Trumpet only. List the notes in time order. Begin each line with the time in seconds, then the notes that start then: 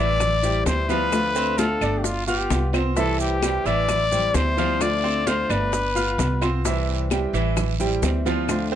Already playing: D5
0.67 C5
0.90 B4
1.59 A4
1.99 G4
2.04 F4
2.27 G4
2.97 A4
3.20 G4
3.66 D5
4.35 C5
4.82 D5
5.28 C5
5.51 B4